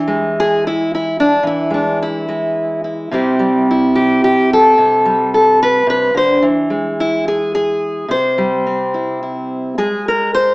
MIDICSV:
0, 0, Header, 1, 2, 480
1, 0, Start_track
1, 0, Key_signature, 0, "major"
1, 0, Tempo, 554017
1, 1256, Time_signature, 3, 2, 24, 8
1, 9136, End_track
2, 0, Start_track
2, 0, Title_t, "Steel-string acoustic guitar"
2, 0, Program_c, 0, 25
2, 0, Note_on_c, 0, 52, 70
2, 0, Note_on_c, 0, 64, 45
2, 65, Note_on_c, 0, 56, 62
2, 345, Note_on_c, 0, 68, 97
2, 564, Note_off_c, 0, 68, 0
2, 580, Note_off_c, 0, 64, 0
2, 580, Note_on_c, 0, 64, 82
2, 800, Note_off_c, 0, 64, 0
2, 820, Note_on_c, 0, 64, 78
2, 1036, Note_off_c, 0, 64, 0
2, 1039, Note_on_c, 0, 62, 81
2, 1227, Note_off_c, 0, 56, 0
2, 1237, Note_off_c, 0, 52, 0
2, 1241, Note_on_c, 0, 52, 66
2, 1267, Note_off_c, 0, 62, 0
2, 1274, Note_on_c, 0, 64, 77
2, 1476, Note_on_c, 0, 56, 52
2, 1503, Note_off_c, 0, 64, 0
2, 1508, Note_on_c, 0, 62, 65
2, 1740, Note_off_c, 0, 62, 0
2, 1754, Note_on_c, 0, 64, 70
2, 1966, Note_off_c, 0, 56, 0
2, 1980, Note_on_c, 0, 56, 39
2, 2451, Note_off_c, 0, 64, 0
2, 2462, Note_on_c, 0, 64, 37
2, 2677, Note_off_c, 0, 56, 0
2, 2695, Note_off_c, 0, 52, 0
2, 2698, Note_on_c, 0, 48, 60
2, 2706, Note_on_c, 0, 55, 39
2, 2715, Note_off_c, 0, 64, 0
2, 2717, Note_on_c, 0, 60, 41
2, 2719, Note_on_c, 0, 64, 42
2, 2723, Note_on_c, 0, 67, 39
2, 2936, Note_off_c, 0, 55, 0
2, 2939, Note_on_c, 0, 55, 54
2, 3208, Note_off_c, 0, 64, 0
2, 3211, Note_on_c, 0, 64, 73
2, 3423, Note_off_c, 0, 67, 0
2, 3427, Note_on_c, 0, 67, 77
2, 3663, Note_off_c, 0, 67, 0
2, 3674, Note_on_c, 0, 67, 80
2, 3910, Note_off_c, 0, 67, 0
2, 3920, Note_off_c, 0, 64, 0
2, 3927, Note_on_c, 0, 69, 86
2, 4115, Note_off_c, 0, 55, 0
2, 4125, Note_off_c, 0, 60, 0
2, 4129, Note_off_c, 0, 48, 0
2, 4140, Note_on_c, 0, 48, 60
2, 4378, Note_on_c, 0, 55, 55
2, 4618, Note_off_c, 0, 69, 0
2, 4628, Note_on_c, 0, 69, 72
2, 4866, Note_off_c, 0, 69, 0
2, 4874, Note_on_c, 0, 71, 83
2, 5072, Note_off_c, 0, 48, 0
2, 5082, Note_on_c, 0, 48, 53
2, 5100, Note_off_c, 0, 71, 0
2, 5110, Note_on_c, 0, 71, 82
2, 5320, Note_off_c, 0, 48, 0
2, 5323, Note_on_c, 0, 50, 57
2, 5344, Note_off_c, 0, 71, 0
2, 5348, Note_on_c, 0, 72, 84
2, 5548, Note_off_c, 0, 55, 0
2, 5562, Note_off_c, 0, 50, 0
2, 5566, Note_on_c, 0, 52, 60
2, 5584, Note_off_c, 0, 72, 0
2, 5806, Note_on_c, 0, 56, 54
2, 6067, Note_on_c, 0, 64, 81
2, 6300, Note_off_c, 0, 64, 0
2, 6307, Note_on_c, 0, 68, 78
2, 6529, Note_off_c, 0, 68, 0
2, 6539, Note_on_c, 0, 68, 85
2, 6977, Note_off_c, 0, 52, 0
2, 6977, Note_off_c, 0, 56, 0
2, 7004, Note_on_c, 0, 48, 61
2, 7016, Note_off_c, 0, 68, 0
2, 7026, Note_on_c, 0, 72, 76
2, 7260, Note_on_c, 0, 55, 58
2, 7508, Note_on_c, 0, 60, 41
2, 7747, Note_on_c, 0, 64, 42
2, 7984, Note_off_c, 0, 64, 0
2, 7994, Note_on_c, 0, 64, 38
2, 8442, Note_off_c, 0, 55, 0
2, 8445, Note_off_c, 0, 60, 0
2, 8445, Note_off_c, 0, 64, 0
2, 8464, Note_off_c, 0, 48, 0
2, 8471, Note_on_c, 0, 56, 60
2, 8475, Note_off_c, 0, 72, 0
2, 8476, Note_on_c, 0, 68, 79
2, 8714, Note_off_c, 0, 68, 0
2, 8735, Note_on_c, 0, 70, 80
2, 8959, Note_off_c, 0, 70, 0
2, 8963, Note_on_c, 0, 72, 98
2, 9136, Note_off_c, 0, 56, 0
2, 9136, Note_off_c, 0, 72, 0
2, 9136, End_track
0, 0, End_of_file